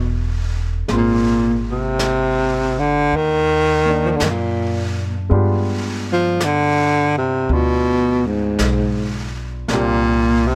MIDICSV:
0, 0, Header, 1, 5, 480
1, 0, Start_track
1, 0, Tempo, 1117318
1, 379, Time_signature, 4, 2, 24, 8
1, 1335, Tempo, 1096892
1, 4592, End_track
2, 0, Start_track
2, 0, Title_t, "Grand piano"
2, 0, Program_c, 0, 0
2, 0, Control_c, 0, 64, 127
2, 0, Note_on_c, 0, 55, 43
2, 0, Note_on_c, 0, 57, 44
2, 0, Note_on_c, 0, 59, 37
2, 0, Note_on_c, 0, 61, 39
2, 0, Note_on_c, 0, 76, 51
2, 378, Note_on_c, 0, 56, 43
2, 379, Note_off_c, 0, 55, 0
2, 380, Note_off_c, 0, 57, 0
2, 382, Note_on_c, 0, 58, 44
2, 384, Note_off_c, 0, 59, 0
2, 385, Control_c, 0, 64, 0
2, 386, Note_off_c, 0, 61, 0
2, 389, Note_on_c, 0, 60, 44
2, 390, Note_off_c, 0, 76, 0
2, 401, Note_on_c, 0, 65, 49
2, 463, Control_c, 0, 64, 127
2, 1655, Note_off_c, 0, 58, 0
2, 1662, Note_on_c, 0, 58, 41
2, 1675, Note_on_c, 0, 62, 43
2, 2285, Note_off_c, 0, 56, 0
2, 2292, Note_on_c, 0, 56, 52
2, 2294, Note_off_c, 0, 62, 0
2, 2294, Note_on_c, 0, 59, 51
2, 2297, Note_off_c, 0, 58, 0
2, 2299, Note_off_c, 0, 65, 0
2, 2300, Note_on_c, 0, 62, 47
2, 2302, Note_off_c, 0, 60, 0
2, 2303, Control_c, 0, 64, 0
2, 2305, Note_on_c, 0, 65, 50
2, 2311, Note_on_c, 0, 67, 52
2, 2390, Control_c, 0, 64, 127
2, 3250, Note_off_c, 0, 59, 0
2, 3257, Note_on_c, 0, 59, 37
2, 3258, Note_off_c, 0, 62, 0
2, 3264, Note_on_c, 0, 62, 32
2, 3265, Note_off_c, 0, 65, 0
2, 3271, Note_on_c, 0, 65, 38
2, 4212, Note_on_c, 0, 58, 51
2, 4214, Note_off_c, 0, 56, 0
2, 4216, Note_off_c, 0, 59, 0
2, 4217, Note_off_c, 0, 62, 0
2, 4220, Note_on_c, 0, 60, 44
2, 4222, Control_c, 0, 64, 0
2, 4223, Note_off_c, 0, 65, 0
2, 4223, Note_off_c, 0, 67, 0
2, 4223, Note_on_c, 0, 62, 45
2, 4233, Note_on_c, 0, 67, 60
2, 4291, Control_c, 0, 64, 127
2, 4592, Note_off_c, 0, 58, 0
2, 4592, Note_off_c, 0, 60, 0
2, 4592, Note_off_c, 0, 62, 0
2, 4592, Note_off_c, 0, 67, 0
2, 4592, End_track
3, 0, Start_track
3, 0, Title_t, "Baritone saxophone"
3, 0, Program_c, 1, 67
3, 0, Note_on_c, 1, 47, 70
3, 238, Note_off_c, 1, 47, 0
3, 412, Note_on_c, 1, 46, 62
3, 706, Note_off_c, 1, 46, 0
3, 731, Note_on_c, 1, 48, 76
3, 1200, Note_on_c, 1, 50, 77
3, 1206, Note_off_c, 1, 48, 0
3, 1358, Note_on_c, 1, 51, 89
3, 1365, Note_off_c, 1, 50, 0
3, 1750, Note_on_c, 1, 53, 66
3, 1756, Note_off_c, 1, 51, 0
3, 1765, Note_on_c, 1, 51, 71
3, 1771, Note_off_c, 1, 53, 0
3, 1797, Note_on_c, 1, 50, 67
3, 1804, Note_off_c, 1, 51, 0
3, 1831, Note_on_c, 1, 51, 70
3, 1837, Note_off_c, 1, 50, 0
3, 1853, Note_on_c, 1, 46, 69
3, 1859, Note_off_c, 1, 51, 0
3, 2238, Note_off_c, 1, 46, 0
3, 2655, Note_on_c, 1, 53, 82
3, 2797, Note_on_c, 1, 50, 88
3, 2803, Note_off_c, 1, 53, 0
3, 3107, Note_off_c, 1, 50, 0
3, 3116, Note_on_c, 1, 48, 69
3, 3270, Note_on_c, 1, 47, 84
3, 3277, Note_off_c, 1, 48, 0
3, 3594, Note_on_c, 1, 44, 62
3, 3601, Note_off_c, 1, 47, 0
3, 4068, Note_off_c, 1, 44, 0
3, 4227, Note_on_c, 1, 46, 79
3, 4559, Note_on_c, 1, 48, 89
3, 4565, Note_off_c, 1, 46, 0
3, 4592, Note_off_c, 1, 48, 0
3, 4592, End_track
4, 0, Start_track
4, 0, Title_t, "Upright bass"
4, 0, Program_c, 2, 32
4, 0, Note_on_c, 2, 28, 72
4, 367, Note_off_c, 2, 28, 0
4, 384, Note_on_c, 2, 32, 66
4, 1321, Note_off_c, 2, 32, 0
4, 1342, Note_on_c, 2, 39, 63
4, 1803, Note_off_c, 2, 39, 0
4, 1820, Note_on_c, 2, 42, 62
4, 2282, Note_off_c, 2, 42, 0
4, 2299, Note_on_c, 2, 43, 71
4, 3241, Note_off_c, 2, 43, 0
4, 3254, Note_on_c, 2, 38, 75
4, 3719, Note_off_c, 2, 38, 0
4, 3736, Note_on_c, 2, 35, 57
4, 4198, Note_off_c, 2, 35, 0
4, 4219, Note_on_c, 2, 36, 71
4, 4592, Note_off_c, 2, 36, 0
4, 4592, End_track
5, 0, Start_track
5, 0, Title_t, "Drums"
5, 380, Note_on_c, 9, 25, 30
5, 380, Note_on_c, 9, 38, 23
5, 423, Note_off_c, 9, 38, 0
5, 855, Note_off_c, 9, 25, 0
5, 855, Note_on_c, 9, 25, 31
5, 855, Note_on_c, 9, 38, 34
5, 855, Note_on_c, 9, 44, 43
5, 898, Note_off_c, 9, 38, 0
5, 898, Note_off_c, 9, 44, 0
5, 1333, Note_off_c, 9, 25, 0
5, 1333, Note_on_c, 9, 25, 31
5, 1813, Note_off_c, 9, 25, 0
5, 1813, Note_on_c, 9, 25, 32
5, 1813, Note_on_c, 9, 38, 35
5, 1813, Note_on_c, 9, 44, 38
5, 1856, Note_off_c, 9, 38, 0
5, 1856, Note_off_c, 9, 44, 0
5, 2293, Note_off_c, 9, 25, 0
5, 2293, Note_on_c, 9, 25, 33
5, 2777, Note_off_c, 9, 25, 0
5, 2777, Note_on_c, 9, 25, 25
5, 2777, Note_on_c, 9, 38, 34
5, 2777, Note_on_c, 9, 44, 49
5, 2821, Note_off_c, 9, 38, 0
5, 2821, Note_off_c, 9, 44, 0
5, 3253, Note_off_c, 9, 25, 0
5, 3253, Note_on_c, 9, 25, 27
5, 3733, Note_off_c, 9, 25, 0
5, 3733, Note_on_c, 9, 25, 34
5, 3733, Note_on_c, 9, 38, 36
5, 3733, Note_on_c, 9, 44, 41
5, 3776, Note_off_c, 9, 38, 0
5, 3776, Note_off_c, 9, 44, 0
5, 4213, Note_off_c, 9, 25, 0
5, 4213, Note_on_c, 9, 25, 30
5, 4213, Note_on_c, 9, 38, 26
5, 4257, Note_off_c, 9, 38, 0
5, 4592, Note_off_c, 9, 25, 0
5, 4592, End_track
0, 0, End_of_file